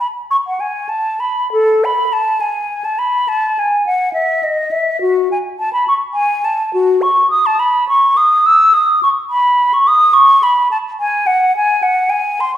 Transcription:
0.00 B5
0.31 C#6
0.47 F#5
0.60 G#5
0.89 A5
1.20 B5
1.52 A4
1.84 B5
2.13 A5
2.41 G#5
2.85 A5
2.99 B5
3.28 A5
3.59 G#5
3.87 F#5
4.13 E5
4.43 D#5
4.71 E5
5.01 F#4
5.32 G#5
5.59 A5
5.73 B5
5.88 C#6
6.14 G#5
6.45 A5
6.74 F#4
7.02 C#6
7.30 D#6
7.46 A5
7.59 B5
7.89 C#6
8.17 D#6
8.46 E6
8.74 D#6
9.03 C#6
9.30 B5
9.74 C#6
9.88 D#6
10.14 C#6
10.43 B5
10.71 A5
11.00 G#5
11.27 F#5
11.56 G#5
11.83 F#5
12.10 G#5
12.40 C6

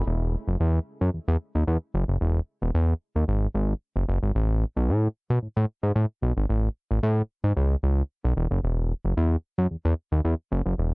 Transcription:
0.07 E1
0.48 F#1
0.60 E2
1.01 F#2
1.14 E2
1.28 E2
1.55 D#2
1.67 E2
1.94 F#1
2.08 F#1
2.21 E1
2.62 E1
2.75 E2
3.16 D#2
3.28 G#1
3.54 G#1
3.96 F#1
4.08 F#1
4.23 G#1
4.35 A1
4.76 B1
4.89 A2
5.30 B2
5.42 A2
5.57 A2
5.83 G#2
5.96 A2
6.22 B1
6.37 G#1
6.49 A1
6.91 A1
7.03 A2
7.44 G#2
7.57 C#2
7.83 C#2
8.24 B1
8.37 E1
8.51 F#1
8.64 E1
9.05 F#1
9.17 E2
9.58 F#2
9.71 E2
9.85 E2
10.12 D#2
10.25 E2
10.52 F#1
10.66 F#1
10.78 E1

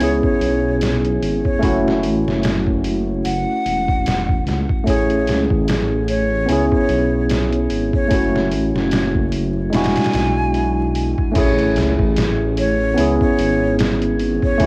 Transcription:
Already playing: B3 C#5
0.00 C#2 C#4 E4 G#4, open hi-hat
0.23 C#5, kick
0.41 B1, open hi-hat
0.81 snare, open hi-hat
1.05 closed hi-hat
1.22 G#1, open hi-hat
1.45 C#5, kick
1.59 F#1 A3 C#4 E4, kick, open hi-hat
1.65 F#4
1.88 snare
2.03 A1, open hi-hat
2.26 F#1, snare
2.43 snare, open hi-hat
2.67 kick
2.84 open hi-hat
3.24 F#1 F#5, open hi-hat
3.66 E1, open hi-hat
3.88 kick
4.06 snare, open hi-hat
4.29 kick
4.46 C#2, snare, open hi-hat
4.69 kick
4.84 A1 A3 C#4 E4 C#5, kick, open hi-hat
4.90 G#4
5.10 closed hi-hat
5.27 C#2, snare, open hi-hat
5.50 A1, kick
5.68 snare, open hi-hat
6.08 C#5, open hi-hat
6.46 C#2 B3 C#4 E4, open hi-hat
6.52 G#4
6.72 C#5, kick
6.89 B1, open hi-hat
7.29 snare, open hi-hat
7.52 closed hi-hat
7.70 G#1, open hi-hat
7.93 C#5, kick
8.08 F#1 A3 C#4 E4, kick, open hi-hat
8.14 F#4
8.36 snare
8.51 A1, open hi-hat
8.74 F#1, snare
8.91 snare, open hi-hat
9.15 kick
9.32 open hi-hat
9.70 E1 G#3 D4 E4, open hi-hat
9.74 F#4 G#5, snare
9.84 snare, open hi-hat
9.96 snare, open hi-hat
10.04 snare, open hi-hat
10.13 B1, snare, open hi-hat
10.54 open hi-hat
10.95 open hi-hat
11.18 kick
11.32 A1 A3 C#4, kick, open hi-hat, crash
11.36 E4 G#4 C#5, impact
11.59 closed hi-hat
11.76 C#2, snare, open hi-hat
11.99 A1, kick
12.16 snare, open hi-hat
12.57 C#5, open hi-hat
12.94 B3 C#4 E4, open hi-hat
12.99 C#2 G#4
13.21 C#5, kick
13.39 G#1, open hi-hat
13.79 snare, open hi-hat
14.02 closed hi-hat
14.19 open hi-hat
14.42 C#5, kick
14.58 F#1 A3 C#4, kick, open hi-hat
14.62 E4

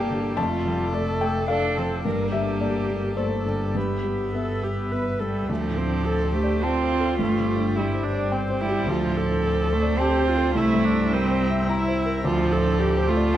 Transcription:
Already playing: G1 G2 D3 A#3 G4 A4 D5 G5 A5
0.10 D3
0.37 F1 F2 A3 F4 A5
0.65 F3 G3
0.92 A3 A4 D5
1.21 A3 G5
1.48 A3 D4 A4 D5 F5
1.77 F3 C4
2.04 G1 G2 A#3 A#4
2.32 D3 G4 E5
2.60 A#3 A4 D5
2.89 A#3
3.17 A3 A#3 A4 C5 D5
3.46 D3 G3
3.75 G2 B3 G4 B4 E5
4.04 G3
4.34 B3 A4 B4 E5
4.62 B3 G4
4.92 B3 B4 E5
5.20 G3 A4
5.49 D2 F3 A3 C4 A4 D5
5.69 A2
5.77 C4
5.87 D4
6.05 A4
6.25 C5
6.34 A3 G4
6.43 D5
6.63 C4 F4 A5
6.81 C5
7.00 A4
7.19 G1 G2 A3 G4
7.38 D3
7.57 D4
7.76 G3 E4 G4
7.95 C5
8.04 D4
8.13 D5
8.32 C4 G5
8.50 C5
8.60 G3 E4
8.69 G4
8.87 D2 F3 F4 A4
9.06 A2
9.17 A4
9.25 D4
9.43 A4
9.63 C5
9.72 A3
9.82 D5
9.98 C4 G4 A5
10.19 C5
10.28 F4
10.37 A4
10.55 C2 A3 C4 E4 E5 A#5
10.74 G2
10.85 D4
10.93 E4
11.12 G3 C4 A#4
11.31 C5
11.50 E5
11.69 E4 A#5
11.88 C5
12.06 A#4
12.23 D2 F3 F4 A4 D5
12.43 A2
12.52 A4
12.61 D4
12.79 G4 A4
12.97 C5
13.07 A3 F4
13.16 D5

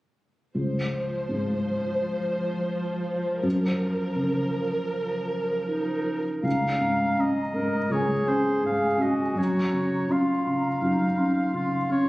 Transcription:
0.55 C#2 F3 C5
1.29 G#2
3.43 F#2 A#4
4.16 C#3
5.65 D#4
6.43 C#2 C#4 F5 A#5
6.81 G#2
7.17 C#4 D#5
7.54 G#2 A#4
7.90 C#2 G#4 C#5 G#5
8.28 C#4 C5
8.63 G#2 F5
8.98 C#4 F#4
9.02 D#5
9.35 F#2 C#5
9.40 A#5
9.73 C#3
10.09 C#4 F4 F5 C6
10.46 C#3 A#5
10.81 F#2 D#4 A#5
11.17 C#4 C6
11.54 C#3 F4 F5
11.90 C#4 C#5

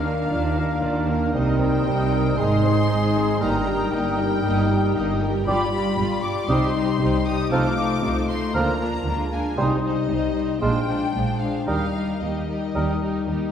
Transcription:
Already playing: D#2 D#3 A#3 D4 A#4 F5 F6
0.04 A#3 D4 A#4 F5
0.30 D#2 D#3 D4 F4 D5
0.56 A#3 D4 A#4 F5
0.82 D#2 D#3 D4 F4 D5
1.07 A#3 D4 A#4 F5
1.33 C2 C3 G3 A#3 D#4 C5 D#5 D#6
1.59 D#3 C4 A#4 C5 G5
1.86 C2 C3 G3 D#4 C5 D#5
2.12 D#3 C4 A#4 C5
2.37 G#1 G#2 G#3 D#4 G#4 C5 D#5 C6
2.64 D#3 C4 G#4 C5
2.89 G#1 G#2 G#3 D#4 C5 D#5
3.16 D#3 C4 G#4 C5
3.41 G1 G2 G3 A#3 D#4 G4 A#4 D#5 A#5
3.67 G3 G4 A#4 G5
3.92 G1 G2 G3 A#3 D#4 G4 D#5 G5
4.19 G3 G4 A#4 G5
4.44 G1 G2 A#3 D#4 G4 D#5
4.70 G3 G4 A#4 G5
4.95 G1 G2 A#3 D#4 G4 D#5
5.22 G3 G4 A#4 G5
5.47 G1 G2 G3 F4 G4 D5 B5 D6
5.73 G3 F4 G4 D5
5.98 G1 G2 G3 F4 G4 D5
6.23 G3 F4 G4 D5 D6
6.48 C2 C3 G3 D#4 G4 C5 C6 D#6
6.75 G3 D#4 G4 C5
7.00 C2 C3 G3 D#4 G4 C5
7.25 G3 D#4 G4 C5 D#6
7.51 C2 C3 F3 A3 D#4 F4 A4 C5 D6 F6
7.77 A3 D#4 F4 C5
8.03 C2 C3 A3 D#4 F4 C5
8.29 A3 D#4 F4 C5 C6
8.53 D2 D3 F3 A#3 D4 F4 A#4 A#5 F6
8.80 A#3 D4 F4 A#4
9.06 D2 D3 G#3 A#3 D4 F4 A#4
9.32 A#3 D4 F4 A#4 G#5
9.57 C2 C3 G3 D#4 C5 D#6
9.84 G3 D#4 C5 D#5
10.09 C2 C3 G3 D#4 C5
10.35 G3 D#4 C5
10.61 A#1 A#2 G#3 D4 F4 C5 G5 F6
10.88 G#3 D4 F4 C5
11.14 A#1 A#2 G#3 D4 F4 C5
11.40 G#3 D4 F4 C5 F5
11.67 D#2 D#3 G3 D#4 G4 A#4 F5 D#6
11.95 G3 D#4 G4 A#4
12.20 D#2 D#3 G3 D#4 G4 A#4 D#5
12.48 G3 D#4 G4 A#4
12.74 D#2 D#3 G3 D#4 G4 A#4 D#6
13.02 G3 D#4 G4 A#4
13.28 D#2 D#3 G3 D#4 G4 A#4

